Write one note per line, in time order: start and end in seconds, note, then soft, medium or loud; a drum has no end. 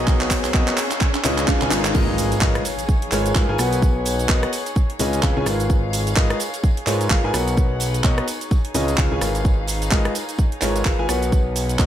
0.00 0.52 B1 loud
0.00 0.52 B3 loud
0.00 5.69 D#4 medium
0.00 0.52 F#4 medium
0.00 11.86 G#4 medium
0.00 0.52 A#4 medium
0.00 0.52 B4 medium
0.00 0.52 C#5 medium
0.00 11.86 C#5 medium
0.00 0.52 D#5 loud
0.00 3.59 F5 medium
0.00 riser medium
0.07 kick loud
0.07 clap medium
0.07 shaker soft
0.21 clap medium
0.21 closed hi-hat soft
0.31 kick medium
0.31 clap loud
0.31 open hi-hat loud
0.31 shaker medium
0.44 clap medium
0.44 open hi-hat medium
0.44 shaker soft
0.54 0.71 B1 loud
0.54 0.73 B3 loud
0.54 0.73 F#4 medium
0.54 0.73 A#4 medium
0.54 0.73 B4 medium
0.54 0.73 C#5 medium
0.54 0.73 D#5 loud
0.54 kick loud
0.54 clap medium
0.54 shaker soft
0.68 clap medium
0.68 closed hi-hat medium
0.78 clap loud
0.78 open hi-hat loud
0.78 shaker medium
0.91 clap medium
0.91 closed hi-hat medium
0.91 shaker soft
1.01 kick loud
1.01 clap loud
1.01 shaker soft
1.15 clap medium
1.15 closed hi-hat medium
1.24 1.46 C#2 loud
1.24 1.44 C#3 medium
1.24 1.44 F4 medium
1.24 1.44 G#4 medium
1.24 1.44 B4 medium
1.24 1.44 C#5 medium
1.24 1.44 D#5 loud
1.24 clap loud
1.24 open hi-hat loud
1.24 shaker medium
1.38 clap loud
1.38 closed hi-hat medium
1.38 shaker soft
1.48 1.60 C#3 medium
1.48 1.60 F4 medium
1.48 1.60 G#4 medium
1.48 1.60 B4 medium
1.48 1.60 C#5 medium
1.48 1.60 F5 loud
1.48 kick loud
1.48 clap loud
1.48 shaker soft
1.61 1.69 C#2 loud
1.61 1.69 C#3 loud
1.61 1.69 F4 medium
1.61 1.69 G#4 medium
1.61 1.69 B4 medium
1.61 1.69 C#5 medium
1.61 1.69 G#5 loud
1.61 clap medium
1.61 closed hi-hat soft
1.71 1.93 G#1 loud
1.71 1.93 G#3 medium
1.71 1.93 F4 medium
1.71 1.93 G#4 medium
1.71 1.93 A#4 medium
1.71 1.93 B4 medium
1.71 2.18 F5 medium
1.71 clap loud
1.71 open hi-hat loud
1.71 shaker medium
1.85 clap loud
1.85 closed hi-hat medium
1.85 shaker soft
1.94 2.40 G#1 loud
1.94 2.38 G#3 loud
1.94 2.38 F4 medium
1.94 2.38 G#4 medium
1.94 2.38 A#4 medium
1.94 2.38 B4 medium
1.94 2.38 D#5 loud
1.94 kick loud
1.94 crash loud
1.94 tambourine soft
1.94 impact medium
1.94 shaker soft
2.18 open hi-hat loud
2.18 tambourine medium
2.18 shaker medium
2.32 closed hi-hat medium
2.32 tambourine soft
2.32 shaker soft
2.41 2.59 G#1 loud
2.41 2.61 G#3 medium
2.41 2.61 F4 medium
2.41 2.61 G#4 medium
2.41 2.61 A#4 medium
2.41 2.61 B4 medium
2.41 2.61 D#5 loud
2.41 kick loud
2.41 clap loud
2.41 shaker soft
2.55 cross-stick medium
2.55 closed hi-hat medium
2.65 open hi-hat medium
2.65 tambourine medium
2.65 shaker medium
2.79 closed hi-hat medium
2.79 tambourine medium
2.79 shaker soft
2.89 kick loud
2.89 tambourine soft
2.89 shaker soft
3.02 closed hi-hat medium
3.12 3.34 G#1 loud
3.12 3.31 G#3 medium
3.12 3.31 F4 medium
3.12 3.31 G#4 medium
3.12 3.31 A#4 medium
3.12 3.31 B4 medium
3.12 3.31 C#5 loud
3.12 clap medium
3.12 open hi-hat loud
3.12 tambourine medium
3.12 shaker medium
3.26 closed hi-hat medium
3.26 tambourine medium
3.26 shaker soft
3.35 3.46 G#2 loud
3.35 3.47 F4 medium
3.35 3.47 G#4 medium
3.35 3.47 A#4 medium
3.35 3.47 B4 medium
3.35 3.47 F5 loud
3.35 kick loud
3.35 clap loud
3.35 tambourine soft
3.35 shaker soft
3.49 3.57 G#1 loud
3.49 3.57 F4 loud
3.49 3.57 G#4 medium
3.49 3.57 A#4 medium
3.49 3.57 B4 medium
3.49 3.57 G#5 loud
3.58 4.27 B1 loud
3.58 4.27 B3 medium
3.58 4.27 F#4 medium
3.58 4.27 A#4 medium
3.58 4.27 B4 medium
3.58 4.27 C#5 medium
3.58 4.27 F#5 medium
3.58 cross-stick medium
3.58 open hi-hat medium
3.58 tambourine medium
3.58 shaker medium
3.73 closed hi-hat medium
3.73 tambourine medium
3.73 shaker soft
3.82 kick loud
3.82 shaker soft
4.05 open hi-hat loud
4.05 tambourine loud
4.05 shaker medium
4.13 4.76 F#5 medium
4.19 closed hi-hat medium
4.19 tambourine medium
4.19 shaker soft
4.29 4.48 B3 medium
4.29 4.48 F#4 medium
4.29 4.48 A#4 medium
4.29 4.48 B4 medium
4.29 4.48 C#5 medium
4.29 4.48 D#5 loud
4.29 kick loud
4.29 clap loud
4.29 shaker soft
4.43 cross-stick medium
4.43 closed hi-hat medium
4.53 open hi-hat medium
4.53 tambourine medium
4.53 shaker medium
4.66 closed hi-hat medium
4.66 tambourine medium
4.66 shaker soft
4.75 kick loud
4.75 tambourine soft
4.75 shaker soft
4.90 closed hi-hat medium
4.99 5.21 C#2 loud
4.99 5.18 C#3 medium
4.99 5.18 F4 medium
4.99 5.18 G#4 medium
4.99 5.18 B4 medium
4.99 5.18 C#5 medium
4.99 5.18 D#5 loud
4.99 open hi-hat loud
4.99 tambourine loud
4.99 shaker medium
5.13 closed hi-hat medium
5.13 tambourine soft
5.13 shaker soft
5.19 5.34 C#2 loud
5.19 5.35 C#3 medium
5.19 5.35 F4 medium
5.19 5.34 G#4 medium
5.19 5.34 B4 medium
5.19 5.34 C#5 medium
5.19 7.34 F5 medium
5.19 5.34 F5 loud
5.19 kick loud
5.19 clap loud
5.23 shaker soft
5.37 5.44 C#2 loud
5.37 5.44 C#3 loud
5.37 5.44 F4 medium
5.37 5.44 G#4 medium
5.37 5.44 B4 medium
5.37 5.44 C#5 medium
5.37 5.44 G#5 loud
5.46 6.15 G#1 loud
5.46 6.14 G#3 medium
5.46 6.14 F4 medium
5.46 6.14 G#4 medium
5.46 6.14 A#4 medium
5.46 6.14 B4 medium
5.46 6.14 F5 medium
5.46 cross-stick medium
5.46 open hi-hat medium
5.46 tambourine loud
5.46 shaker medium
5.60 closed hi-hat medium
5.60 tambourine medium
5.60 shaker soft
5.70 11.86 D#4 medium
5.70 kick loud
5.70 tambourine soft
5.70 shaker soft
5.93 open hi-hat loud
5.93 tambourine loud
5.93 shaker medium
6.07 closed hi-hat medium
6.07 tambourine medium
6.07 shaker soft
6.16 6.34 G#1 loud
6.16 6.36 G#3 medium
6.16 6.36 F4 medium
6.16 6.36 G#4 medium
6.16 6.36 A#4 medium
6.16 6.36 B4 medium
6.16 6.36 D#5 loud
6.16 kick loud
6.16 clap loud
6.16 shaker soft
6.30 cross-stick medium
6.30 closed hi-hat medium
6.40 open hi-hat medium
6.40 tambourine medium
6.40 shaker medium
6.53 closed hi-hat medium
6.53 tambourine medium
6.53 shaker soft
6.64 kick loud
6.64 tambourine soft
6.64 shaker soft
6.77 closed hi-hat medium
6.87 7.08 G#2 loud
6.87 7.06 G#3 medium
6.87 7.06 F4 medium
6.87 7.06 G#4 medium
6.87 7.06 A#4 medium
6.87 7.06 B4 medium
6.87 7.06 C#5 loud
6.87 clap medium
6.87 open hi-hat loud
6.87 tambourine medium
6.87 shaker medium
7.01 closed hi-hat medium
7.01 tambourine soft
7.01 shaker soft
7.10 7.21 G#1 loud
7.10 7.22 F4 medium
7.10 7.22 G#4 medium
7.10 7.22 A#4 medium
7.10 7.22 B4 medium
7.10 7.22 F5 loud
7.10 kick loud
7.10 clap loud
7.10 shaker soft
7.24 7.32 G#2 loud
7.24 7.32 F4 loud
7.24 7.32 G#4 medium
7.24 7.32 A#4 medium
7.24 7.32 B4 medium
7.24 7.32 G#5 loud
7.34 8.02 B1 loud
7.34 8.02 B3 medium
7.34 8.02 F#4 medium
7.34 8.02 A#4 medium
7.34 8.02 B4 medium
7.34 8.02 C#5 medium
7.34 8.02 F#5 medium
7.34 cross-stick medium
7.34 open hi-hat loud
7.34 tambourine loud
7.34 shaker medium
7.48 closed hi-hat medium
7.48 tambourine medium
7.48 shaker soft
7.57 kick loud
7.57 tambourine soft
7.57 shaker soft
7.62 8.51 F#5 medium
7.80 open hi-hat loud
7.80 tambourine loud
7.80 shaker medium
7.94 closed hi-hat medium
7.94 tambourine medium
7.94 shaker soft
8.04 8.21 B1 loud
8.04 8.23 B3 medium
8.04 8.23 F#4 medium
8.04 8.23 A#4 medium
8.04 8.23 B4 medium
8.04 8.23 C#5 medium
8.04 8.23 D#5 loud
8.04 kick loud
8.04 clap loud
8.04 shaker soft
8.18 cross-stick medium
8.18 closed hi-hat soft
8.28 open hi-hat loud
8.28 tambourine loud
8.28 shaker medium
8.41 closed hi-hat medium
8.41 tambourine medium
8.41 shaker soft
8.51 kick loud
8.51 tambourine soft
8.51 shaker soft
8.65 closed hi-hat soft
8.70 11.09 F5 medium
8.74 8.96 C#2 medium
8.74 8.93 C#3 medium
8.74 8.93 F4 medium
8.74 8.93 G#4 medium
8.74 8.93 B4 medium
8.74 8.94 C#5 medium
8.74 8.93 D#5 loud
8.74 open hi-hat loud
8.74 tambourine medium
8.74 shaker medium
8.88 closed hi-hat medium
8.88 tambourine medium
8.88 shaker soft
8.98 9.09 C#2 loud
8.98 9.10 C#3 medium
8.98 9.10 F4 medium
8.98 9.10 G#4 medium
8.98 9.10 B4 medium
8.98 9.10 C#5 medium
8.98 9.10 F5 loud
8.98 kick loud
8.98 clap loud
8.98 shaker soft
9.11 9.20 C#2 medium
9.11 9.19 C#3 loud
9.11 9.19 F4 medium
9.11 9.19 G#4 medium
9.11 9.19 B4 medium
9.11 9.19 C#5 medium
9.11 9.19 G#5 loud
9.21 9.90 G#1 loud
9.21 9.89 G#3 medium
9.21 9.89 F4 medium
9.21 9.89 G#4 medium
9.21 9.89 A#4 medium
9.21 9.89 B4 medium
9.21 9.89 F5 medium
9.21 cross-stick medium
9.21 open hi-hat loud
9.21 tambourine medium
9.21 shaker medium
9.35 closed hi-hat medium
9.35 tambourine medium
9.35 shaker soft
9.45 kick loud
9.45 tambourine soft
9.45 shaker soft
9.67 open hi-hat loud
9.67 tambourine loud
9.67 shaker medium
9.82 closed hi-hat medium
9.82 tambourine medium
9.82 shaker soft
9.91 10.11 G#3 medium
9.91 10.11 F4 medium
9.91 10.11 G#4 medium
9.91 10.11 A#4 medium
9.91 10.11 B4 medium
9.91 10.11 D#5 loud
9.91 kick loud
9.91 clap loud
9.91 tambourine soft
9.91 shaker soft
10.05 cross-stick medium
10.05 closed hi-hat medium
10.15 open hi-hat medium
10.15 tambourine medium
10.15 shaker medium
10.28 closed hi-hat medium
10.28 tambourine medium
10.28 shaker soft
10.38 kick loud
10.38 tambourine soft
10.38 shaker soft
10.52 closed hi-hat medium
10.61 10.84 G#1 loud
10.61 10.81 G#3 medium
10.61 10.81 F4 medium
10.61 10.81 G#4 medium
10.61 10.81 A#4 medium
10.61 10.81 B4 medium
10.61 10.81 C#5 loud
10.61 clap medium
10.61 open hi-hat loud
10.61 tambourine loud
10.61 shaker medium
10.76 closed hi-hat medium
10.76 tambourine soft
10.76 shaker soft
10.85 10.96 G#1 loud
10.85 10.97 F4 medium
10.85 10.97 G#4 medium
10.85 10.97 A#4 medium
10.85 10.97 B4 medium
10.85 10.97 F5 loud
10.85 kick loud
10.85 clap loud
10.85 tambourine soft
10.85 shaker soft
10.99 11.07 G#1 medium
10.99 11.07 F4 loud
10.99 11.06 G#4 medium
10.99 11.06 A#4 medium
10.99 11.06 B4 medium
10.99 11.06 G#5 loud
11.09 11.77 B1 loud
11.09 11.77 B3 medium
11.09 11.77 F#4 medium
11.09 11.77 A#4 medium
11.09 11.77 B4 medium
11.09 11.77 C#5 medium
11.09 11.77 F#5 medium
11.09 cross-stick medium
11.09 open hi-hat medium
11.09 tambourine medium
11.09 shaker medium
11.22 closed hi-hat medium
11.22 tambourine medium
11.22 shaker soft
11.32 kick loud
11.32 tambourine soft
11.32 shaker soft
11.56 open hi-hat loud
11.56 tambourine medium
11.56 shaker medium
11.63 11.86 F#5 medium
11.69 closed hi-hat medium
11.69 tambourine medium
11.69 shaker soft
11.79 11.86 B3 loud
11.79 11.86 F#4 medium
11.79 11.86 A#4 medium
11.79 11.86 B4 medium
11.79 11.86 C#5 medium
11.79 11.86 D#5 loud
11.79 kick loud
11.79 clap loud
11.79 shaker soft